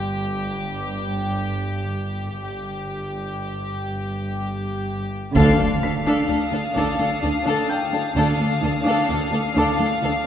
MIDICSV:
0, 0, Header, 1, 11, 480
1, 0, Start_track
1, 0, Tempo, 941915
1, 742, Tempo, 974026
1, 1220, Time_signature, 3, 2, 24, 8
1, 2662, Tempo, 936037
1, 5182, End_track
2, 0, Start_track
2, 0, Title_t, "Grand piano"
2, 0, Program_c, 0, 0
2, 0, Control_c, 0, 64, 127
2, 0, Note_on_c, 0, 79, 24
2, 0, Note_on_c, 0, 91, 26
2, 961, Note_off_c, 0, 79, 0
2, 961, Note_off_c, 0, 91, 0
2, 2670, Control_c, 0, 64, 0
2, 2770, Control_c, 0, 64, 127
2, 2908, Note_on_c, 0, 95, 31
2, 3863, Note_on_c, 0, 91, 24
2, 3869, Note_on_c, 0, 79, 26
2, 4328, Note_off_c, 0, 95, 0
2, 4830, Note_on_c, 0, 86, 36
2, 5182, Note_off_c, 0, 79, 0
2, 5182, Note_off_c, 0, 86, 0
2, 5182, Note_off_c, 0, 91, 0
2, 5182, End_track
3, 0, Start_track
3, 0, Title_t, "Violin section"
3, 0, Program_c, 1, 48
3, 2663, Note_on_c, 1, 81, 31
3, 3141, Note_on_c, 1, 87, 24
3, 5182, Note_off_c, 1, 81, 0
3, 5182, Note_off_c, 1, 87, 0
3, 5182, End_track
4, 0, Start_track
4, 0, Title_t, "Violin section"
4, 0, Program_c, 2, 48
4, 0, Note_on_c, 2, 67, 36
4, 1202, Note_off_c, 2, 67, 0
4, 1222, Note_on_c, 2, 67, 22
4, 2542, Note_off_c, 2, 67, 0
4, 2663, Note_on_c, 2, 77, 42
4, 4087, Note_off_c, 2, 77, 0
4, 4107, Note_on_c, 2, 77, 37
4, 5182, Note_off_c, 2, 77, 0
4, 5182, End_track
5, 0, Start_track
5, 0, Title_t, "Violin section"
5, 0, Program_c, 3, 48
5, 2662, Note_on_c, 3, 69, 55
5, 2774, Note_off_c, 3, 69, 0
5, 2785, Note_on_c, 3, 69, 31
5, 2826, Note_off_c, 3, 69, 0
5, 2910, Note_on_c, 3, 69, 27
5, 2951, Note_off_c, 3, 69, 0
5, 3030, Note_on_c, 3, 69, 41
5, 3138, Note_off_c, 3, 69, 0
5, 3145, Note_on_c, 3, 69, 28
5, 3186, Note_off_c, 3, 69, 0
5, 3266, Note_on_c, 3, 69, 28
5, 3307, Note_off_c, 3, 69, 0
5, 3388, Note_on_c, 3, 69, 40
5, 3498, Note_off_c, 3, 69, 0
5, 3508, Note_on_c, 3, 69, 33
5, 3549, Note_off_c, 3, 69, 0
5, 3627, Note_on_c, 3, 69, 24
5, 3668, Note_off_c, 3, 69, 0
5, 3752, Note_on_c, 3, 69, 41
5, 3861, Note_off_c, 3, 69, 0
5, 3987, Note_on_c, 3, 69, 33
5, 4028, Note_off_c, 3, 69, 0
5, 4103, Note_on_c, 3, 69, 39
5, 4216, Note_off_c, 3, 69, 0
5, 4227, Note_on_c, 3, 69, 27
5, 4268, Note_off_c, 3, 69, 0
5, 4349, Note_on_c, 3, 69, 26
5, 4390, Note_off_c, 3, 69, 0
5, 4469, Note_on_c, 3, 69, 43
5, 4577, Note_off_c, 3, 69, 0
5, 4593, Note_on_c, 3, 69, 33
5, 4634, Note_off_c, 3, 69, 0
5, 4707, Note_on_c, 3, 69, 26
5, 4748, Note_off_c, 3, 69, 0
5, 4820, Note_on_c, 3, 69, 35
5, 4928, Note_off_c, 3, 69, 0
5, 4934, Note_on_c, 3, 69, 35
5, 4975, Note_off_c, 3, 69, 0
5, 5063, Note_on_c, 3, 69, 31
5, 5104, Note_off_c, 3, 69, 0
5, 5182, End_track
6, 0, Start_track
6, 0, Title_t, "Viola section"
6, 0, Program_c, 4, 48
6, 2664, Note_on_c, 4, 62, 58
6, 2775, Note_off_c, 4, 62, 0
6, 2781, Note_on_c, 4, 62, 27
6, 2822, Note_off_c, 4, 62, 0
6, 2905, Note_on_c, 4, 62, 29
6, 2946, Note_off_c, 4, 62, 0
6, 3022, Note_on_c, 4, 62, 45
6, 3134, Note_off_c, 4, 62, 0
6, 3141, Note_on_c, 4, 62, 29
6, 3182, Note_off_c, 4, 62, 0
6, 3262, Note_on_c, 4, 62, 31
6, 3303, Note_off_c, 4, 62, 0
6, 3375, Note_on_c, 4, 62, 41
6, 3491, Note_off_c, 4, 62, 0
6, 3502, Note_on_c, 4, 62, 26
6, 3543, Note_off_c, 4, 62, 0
6, 3620, Note_on_c, 4, 62, 29
6, 3661, Note_off_c, 4, 62, 0
6, 3739, Note_on_c, 4, 62, 40
6, 3855, Note_off_c, 4, 62, 0
6, 3986, Note_on_c, 4, 62, 37
6, 4027, Note_off_c, 4, 62, 0
6, 4098, Note_on_c, 4, 62, 38
6, 4213, Note_off_c, 4, 62, 0
6, 4221, Note_on_c, 4, 62, 24
6, 4262, Note_off_c, 4, 62, 0
6, 4336, Note_on_c, 4, 62, 28
6, 4377, Note_off_c, 4, 62, 0
6, 4449, Note_on_c, 4, 62, 45
6, 4565, Note_off_c, 4, 62, 0
6, 4571, Note_on_c, 4, 62, 27
6, 4612, Note_off_c, 4, 62, 0
6, 4693, Note_on_c, 4, 62, 30
6, 4734, Note_off_c, 4, 62, 0
6, 4813, Note_on_c, 4, 62, 42
6, 4928, Note_off_c, 4, 62, 0
6, 4939, Note_on_c, 4, 62, 28
6, 4980, Note_off_c, 4, 62, 0
6, 5058, Note_on_c, 4, 62, 30
6, 5099, Note_off_c, 4, 62, 0
6, 5182, End_track
7, 0, Start_track
7, 0, Title_t, "Cello section"
7, 0, Program_c, 5, 48
7, 2658, Note_on_c, 5, 50, 54
7, 2804, Note_off_c, 5, 50, 0
7, 2901, Note_on_c, 5, 50, 28
7, 3046, Note_off_c, 5, 50, 0
7, 3143, Note_on_c, 5, 62, 28
7, 3287, Note_off_c, 5, 62, 0
7, 3384, Note_on_c, 5, 50, 44
7, 3529, Note_off_c, 5, 50, 0
7, 3626, Note_on_c, 5, 62, 29
7, 3770, Note_off_c, 5, 62, 0
7, 3865, Note_on_c, 5, 62, 31
7, 4010, Note_off_c, 5, 62, 0
7, 4106, Note_on_c, 5, 50, 43
7, 4249, Note_off_c, 5, 50, 0
7, 4349, Note_on_c, 5, 50, 32
7, 4490, Note_off_c, 5, 50, 0
7, 4585, Note_on_c, 5, 62, 29
7, 4728, Note_off_c, 5, 62, 0
7, 4827, Note_on_c, 5, 50, 44
7, 4969, Note_off_c, 5, 50, 0
7, 5063, Note_on_c, 5, 62, 32
7, 5182, Note_off_c, 5, 62, 0
7, 5182, End_track
8, 0, Start_track
8, 0, Title_t, "Cello section"
8, 0, Program_c, 6, 48
8, 0, Note_on_c, 6, 43, 40
8, 1214, Note_off_c, 6, 43, 0
8, 1220, Note_on_c, 6, 43, 25
8, 2541, Note_off_c, 6, 43, 0
8, 2660, Note_on_c, 6, 38, 51
8, 2773, Note_off_c, 6, 38, 0
8, 2779, Note_on_c, 6, 38, 28
8, 2820, Note_off_c, 6, 38, 0
8, 2898, Note_on_c, 6, 38, 25
8, 2939, Note_off_c, 6, 38, 0
8, 3020, Note_on_c, 6, 38, 37
8, 3061, Note_off_c, 6, 38, 0
8, 3140, Note_on_c, 6, 38, 29
8, 3181, Note_off_c, 6, 38, 0
8, 3260, Note_on_c, 6, 38, 32
8, 3301, Note_off_c, 6, 38, 0
8, 3381, Note_on_c, 6, 38, 37
8, 3422, Note_off_c, 6, 38, 0
8, 3503, Note_on_c, 6, 38, 31
8, 3544, Note_off_c, 6, 38, 0
8, 3621, Note_on_c, 6, 38, 29
8, 3662, Note_off_c, 6, 38, 0
8, 3742, Note_on_c, 6, 38, 37
8, 3784, Note_off_c, 6, 38, 0
8, 3983, Note_on_c, 6, 38, 30
8, 4024, Note_off_c, 6, 38, 0
8, 4103, Note_on_c, 6, 38, 47
8, 4144, Note_off_c, 6, 38, 0
8, 4222, Note_on_c, 6, 38, 32
8, 4263, Note_off_c, 6, 38, 0
8, 4337, Note_on_c, 6, 38, 26
8, 4379, Note_off_c, 6, 38, 0
8, 4456, Note_on_c, 6, 38, 41
8, 4497, Note_off_c, 6, 38, 0
8, 4577, Note_on_c, 6, 38, 34
8, 4619, Note_off_c, 6, 38, 0
8, 4697, Note_on_c, 6, 38, 34
8, 4738, Note_off_c, 6, 38, 0
8, 4817, Note_on_c, 6, 38, 39
8, 4858, Note_off_c, 6, 38, 0
8, 4938, Note_on_c, 6, 38, 32
8, 4979, Note_off_c, 6, 38, 0
8, 5058, Note_on_c, 6, 38, 33
8, 5099, Note_off_c, 6, 38, 0
8, 5182, End_track
9, 0, Start_track
9, 0, Title_t, "Double bass section"
9, 0, Program_c, 7, 48
9, 0, Note_on_c, 7, 31, 39
9, 1218, Note_off_c, 7, 31, 0
9, 1223, Note_on_c, 7, 31, 25
9, 2543, Note_off_c, 7, 31, 0
9, 2660, Note_on_c, 7, 38, 58
9, 2773, Note_off_c, 7, 38, 0
9, 2903, Note_on_c, 7, 38, 27
9, 2944, Note_off_c, 7, 38, 0
9, 3141, Note_on_c, 7, 38, 33
9, 3182, Note_off_c, 7, 38, 0
9, 3383, Note_on_c, 7, 38, 39
9, 3424, Note_off_c, 7, 38, 0
9, 3625, Note_on_c, 7, 38, 29
9, 3666, Note_off_c, 7, 38, 0
9, 4103, Note_on_c, 7, 38, 44
9, 4144, Note_off_c, 7, 38, 0
9, 4344, Note_on_c, 7, 38, 28
9, 4385, Note_off_c, 7, 38, 0
9, 4586, Note_on_c, 7, 38, 31
9, 4627, Note_off_c, 7, 38, 0
9, 4822, Note_on_c, 7, 38, 41
9, 4863, Note_off_c, 7, 38, 0
9, 5062, Note_on_c, 7, 38, 29
9, 5103, Note_off_c, 7, 38, 0
9, 5182, End_track
10, 0, Start_track
10, 0, Title_t, "Impact"
10, 0, Program_c, 8, 103
10, 2661, Note_on_c, 8, 60, 39
10, 4107, Note_off_c, 8, 60, 0
10, 5182, End_track
11, 0, Start_track
11, 0, Title_t, "Taiko and cinematic ensemble drums"
11, 2662, Note_on_c, 9, 41, 44
11, 2713, Note_off_c, 9, 41, 0
11, 3384, Note_on_c, 9, 41, 26
11, 3435, Note_off_c, 9, 41, 0
11, 5182, End_track
0, 0, End_of_file